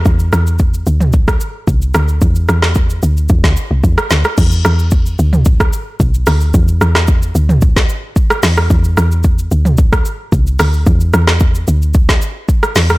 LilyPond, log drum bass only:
\new Staff \with { instrumentName = "Log drum bass" } { \clef bass \time 4/4 \key c \lydian \tempo 4 = 111 e,8 e,4 d,4 r8 c,8 d,8 | e,8 e,4 d,8 e,16 d,16 r16 c,16 e,16 r16 d,16 r16 | e,8 e,4 d,4 r8 b,,8 d,8 | e,8 e,4 d,4 r4 e,8 |
e,8 e,4 d,4 r8 c,8 d,8 | e,8 e,4 d,4 r4 e,8 | }